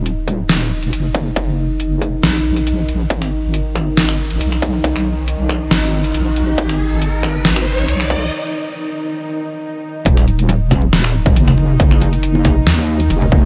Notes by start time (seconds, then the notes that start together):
Already playing: D#1 D#3 D#4
0.06 closed hi-hat
0.28 kick, closed hi-hat
0.49 snare, closed hi-hat
0.61 closed hi-hat
0.83 closed hi-hat
0.93 F#1, closed hi-hat
1.15 kick, closed hi-hat
1.36 F#1, kick, closed hi-hat
1.80 closed hi-hat
2.02 kick, closed hi-hat
2.23 A#1, snare, closed hi-hat
2.35 closed hi-hat
2.57 closed hi-hat
2.67 closed hi-hat
2.89 A#1, closed hi-hat
3.10 G#1, kick, closed hi-hat, riser
3.22 finger snap
3.54 closed hi-hat
3.75 finger snap, kick, closed hi-hat
3.97 snare, closed hi-hat
4.09 finger snap, closed hi-hat
4.31 closed hi-hat
4.41 B1, closed hi-hat
4.52 finger snap
4.62 kick, closed hi-hat
4.84 B1, kick, closed hi-hat
4.96 finger snap
5.28 closed hi-hat
5.49 finger snap, kick, closed hi-hat
5.71 G#1, snare, closed hi-hat
5.82 closed hi-hat
6.04 closed hi-hat
6.14 A#1, closed hi-hat
6.36 closed hi-hat
6.58 G#1, kick, closed hi-hat
6.69 finger snap
7.02 closed hi-hat
7.23 finger snap, kick, closed hi-hat
7.45 snare, closed hi-hat
7.56 finger snap, closed hi-hat
7.78 closed hi-hat
7.88 B1, closed hi-hat
8.00 finger snap
8.10 kick, closed hi-hat
10.05 D#1 D#3 D#4, kick, closed hi-hat, muted conga
10.17 finger snap
10.28 closed hi-hat
10.39 closed hi-hat
10.49 closed hi-hat, muted conga
10.71 finger snap, kick, closed hi-hat, low conga
10.82 muted conga
10.93 snare, closed hi-hat
11.04 finger snap
11.26 kick, closed hi-hat, muted conga, high conga
11.36 F#1, closed hi-hat, high conga
11.48 finger snap, low conga
11.58 muted conga
11.80 F#1, kick, closed hi-hat
11.91 finger snap
12.02 closed hi-hat, muted conga
12.13 closed hi-hat
12.23 closed hi-hat
12.35 muted conga
12.45 finger snap, kick, closed hi-hat, low conga
12.67 D#2, snare, closed hi-hat
12.78 muted conga
13.00 closed hi-hat, high conga
13.10 F1, closed hi-hat, muted conga, high conga
13.22 low conga
13.32 kick